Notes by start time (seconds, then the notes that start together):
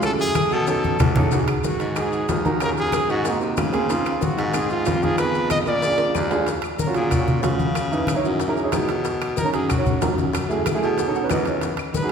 Already playing: F#2
0.02 A3 G#4 A4, high bongo, high conga, high timbale, claves, maracas
0.19 G#4, high bongo, high conga, maracas
0.35 high bongo, high conga, high timbale, low timbale, claves, maracas
0.51 B2 A4, high bongo, high conga, maracas
0.67 C#4 D#4 A4, high bongo, high conga, high timbale, maracas
0.83 high bongo, high conga, maracas
0.99 E2, high bongo, low bongo, low conga, high timbale, low timbale, claves, maracas
1.16 C#4 D#4 A4, low conga, high timbale, maracas
1.31 D#4 F#4 G#4, high bongo, high conga, high timbale, maracas
1.47 high bongo, high conga, high timbale, claves, maracas
1.64 F#4, high bongo, high conga, low timbale, maracas
1.80 G#2, high bongo, high conga, high timbale, maracas
1.96 D#4 F#4 G#4, high bongo, high conga, high timbale, claves, maracas
2.12 high bongo, high conga, maracas
2.28 D#2, high bongo, low bongo, high conga, high timbale, low timbale, maracas
2.44 D#4 F#4 A#4, high conga, maracas
2.60 C#4 F4 F#4 G#4 A#4, high bongo, high conga, high timbale, claves, maracas
2.77 G#4, high bongo, high conga, maracas
2.92 high bongo, high conga, high timbale, low timbale, claves, maracas
3.09 G#2 F#4, high bongo, high conga, maracas
3.25 A#3 C4 D#4 F#4, high bongo, high conga, high timbale, maracas
3.41 C3, high bongo, high conga, maracas
3.57 C#3, high bongo, low bongo, high conga, high timbale, low timbale, claves, maracas
3.72 A#3 C4 G#4, high conga, high timbale, maracas
3.88 C4 D#4 F4, high bongo, high conga, high timbale, maracas
4.06 high bongo, high conga, high timbale, claves, maracas
4.21 F#4, high bongo, high conga, low timbale, maracas
4.38 G#2, high bongo, high conga, high timbale, maracas
4.53 C4 D#4 G#4, high bongo, high conga, high timbale, claves, maracas
4.70 F4, high bongo, high conga, maracas
4.85 F2, high bongo, low bongo, high conga, high timbale, low timbale, maracas
5.02 C4 D#4 F4 G#4, high conga, maracas
5.18 B3 D#4 G#4 B4, high bongo, high conga, high timbale, claves, maracas
5.34 high bongo, high conga, maracas
5.50 D#5, high bongo, high conga, high timbale, low timbale, claves, maracas
5.66 A#2 D5, high bongo, high conga, high timbale, maracas
5.82 D4 F4 G#4, high bongo, high conga, high timbale, maracas
5.98 high bongo, high conga, high timbale, maracas
6.15 D#2, high bongo, low bongo, high conga, low timbale, claves, maracas
6.30 D4 F4 G#4, high conga, low timbale, maracas
6.46 high bongo, high conga, high timbale, maracas
6.62 high bongo, high conga, high timbale, claves, maracas
6.78 A#4, high bongo, high conga, low timbale, maracas
6.86 C#4 F4 F#4
6.94 A#2 G#4, high bongo, high conga, high timbale, maracas
7.11 F#4, high bongo, high conga, low conga, high timbale, claves, maracas
7.18 C#4 F4 F#4
7.27 high bongo, high conga, low conga, maracas
7.41 C#3 C#4 F4 F#4, high bongo, low bongo, high conga, high timbale, low timbale, maracas
7.59 high conga, maracas
7.75 high bongo, high conga, high timbale, claves, maracas
7.91 D#4 E4 B4, high bongo, high conga, maracas
8.07 high bongo, high conga, high timbale, low timbale, claves, maracas
8.15 D#4 E4 C#5
8.24 F#2, high bongo, high conga, maracas
8.40 high bongo, high conga, high timbale, maracas
8.47 D#4 E4 G#4 A#4
8.57 high bongo, high conga, maracas
8.63 D#4 E4 G#4 C#5
8.72 B2 A#5, high bongo, low bongo, high conga, high timbale, low timbale, claves, maracas
8.89 high conga, high timbale, maracas
9.05 high bongo, high conga, high timbale, maracas
9.21 high bongo, high conga, high timbale, claves, maracas
9.37 A#4, high bongo, high conga, low timbale, maracas
9.44 C#4 D#4 A#4
9.53 F#2 G#4, high bongo, high conga, high timbale, maracas
9.69 F#4, high bongo, high conga, low conga, high timbale, claves, maracas
9.77 C#4 D#4 C#5
9.86 high bongo, high conga, low conga, maracas
10.01 F#2 C#4 D#4 A#4, high bongo, low bongo, high conga, high timbale, low timbale, maracas
10.18 high conga, maracas
10.33 high bongo, high conga, high timbale, claves, maracas
10.49 A3 E4 G#4, high bongo, high conga, maracas
10.66 high bongo, high conga, high timbale, low timbale, claves, maracas
10.74 A3 E4 G#4
10.82 B2 A5, high bongo, high conga, maracas
10.98 F#5, high bongo, high conga, high timbale, maracas
11.07 C#4 D#4 A4
11.15 F#5, high bongo, high conga, maracas
11.23 C#4 D#4 B4
11.29 E2 D#5, high bongo, low bongo, high conga, high timbale, low timbale, claves, maracas
11.45 C#5, high conga, high timbale, maracas
11.61 high bongo, high conga, high timbale, maracas
11.77 high bongo, high conga, high timbale, claves, maracas
11.93 B4, high bongo, high conga, low timbale, maracas
12.02 D#4 F#4 G#4